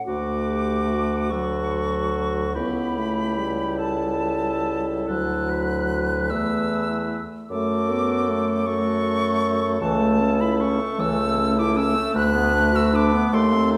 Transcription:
0.06 bassoon D2, french horn A3, clarinet F#4, oboe F#4, flute D6
0.48 clarinet G4
0.90 clarinet F#4
1.30 french horn F#3, oboe F#4, clarinet A4, flute C#6
2.55 bassoon C#2, french horn B3, clarinet E4, oboe G4, flute B5
2.98 french horn A3
3.38 french horn G3
3.78 oboe A4, flute A5
5.07 bassoon D2, french horn F#3, oboe A4, flute F#6
5.49 oboe B4
5.90 oboe B4
6.30 bassoon E2, french horn A3, flute E6
7.50 bassoon F#2, french horn A3, clarinet F#4, oboe A4, flute D6
7.90 french horn B3
8.29 french horn A3
8.66 french horn A3, clarinet F#4, oboe A4, flute C#6
9.80 bassoon C#2, clarinet E3, french horn A3, oboe A4, flute A5
9.99 clarinet A3
10.20 clarinet C#4
10.40 clarinet E4, flute B5
10.61 clarinet C#4, flute C#6
10.80 clarinet A3
10.98 bassoon C#2, clarinet E3, flute E6
11.18 clarinet A3
11.36 clarinet C#4
11.56 clarinet E4, flute D6
11.76 clarinet C#4, flute E6
11.95 clarinet A3
12.14 bassoon D2, clarinet A3, oboe B4, flute F#6
12.33 clarinet B3
12.53 clarinet D4
12.72 clarinet F#4, flute E6
12.93 clarinet D4, flute D6
13.13 clarinet B3
13.32 bassoon D#2, clarinet A3, oboe A4, flute C6
13.53 clarinet C4
13.72 clarinet D#4

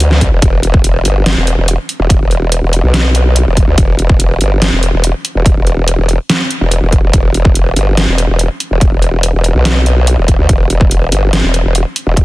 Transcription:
Already playing: wobble bass D2
0.00 closed hi-hat
0.11 snare
0.21 kick, closed hi-hat
0.32 wobble bass E1
0.42 wobble bass E1, kick, closed hi-hat
0.63 closed hi-hat
0.74 kick
0.84 closed hi-hat
1.05 wobble bass G1, closed hi-hat
1.26 snare, closed hi-hat
1.37 wobble bass E1
1.47 closed hi-hat
1.58 wobble bass E1
1.68 closed hi-hat
1.89 closed hi-hat
2.00 wobble bass E1
2.10 kick, closed hi-hat
2.21 wobble bass E1
2.31 closed hi-hat
2.52 closed hi-hat
2.63 wobble bass E1
2.73 closed hi-hat
2.84 wobble bass B1
2.94 snare, closed hi-hat
3.15 closed hi-hat
3.36 closed hi-hat
3.46 wobble bass E1
3.57 kick, closed hi-hat
3.67 wobble bass D2
3.78 wobble bass E1, kick, closed hi-hat
3.99 closed hi-hat
4.09 kick
4.20 closed hi-hat
4.41 wobble bass G1, closed hi-hat
4.62 snare, closed hi-hat
4.72 wobble bass E1
4.83 closed hi-hat
4.93 wobble bass E1
5.04 closed hi-hat
5.25 closed hi-hat
5.35 wobble bass E1
5.46 kick, closed hi-hat
5.56 wobble bass E1
5.67 closed hi-hat
5.88 closed hi-hat
5.98 wobble bass E1
6.09 closed hi-hat
6.30 snare, closed hi-hat
6.51 closed hi-hat
6.61 wobble bass E1
6.72 closed hi-hat
6.82 wobble bass E1
6.92 kick, closed hi-hat
7.03 wobble bass E1
7.13 wobble bass E1, kick, closed hi-hat
7.34 closed hi-hat
7.45 kick
7.55 closed hi-hat
7.76 wobble bass G1, closed hi-hat
7.97 snare, closed hi-hat
8.08 wobble bass E1
8.18 closed hi-hat
8.29 wobble bass E1
8.39 closed hi-hat
8.60 closed hi-hat
8.71 wobble bass E1
8.81 kick, closed hi-hat
8.92 wobble bass E1
9.02 closed hi-hat
9.23 closed hi-hat
9.34 wobble bass E1
9.44 closed hi-hat
9.55 wobble bass B1
9.65 snare, closed hi-hat
9.86 closed hi-hat
10.07 closed hi-hat
10.18 wobble bass E1
10.28 kick, closed hi-hat
10.39 wobble bass D2
10.49 wobble bass E1, kick, closed hi-hat
10.70 closed hi-hat
10.81 kick
10.91 closed hi-hat
11.12 wobble bass G1, closed hi-hat
11.33 snare, closed hi-hat
11.44 wobble bass E1
11.54 closed hi-hat
11.65 wobble bass E1
11.75 closed hi-hat
11.96 closed hi-hat
12.07 wobble bass E1
12.17 kick, closed hi-hat

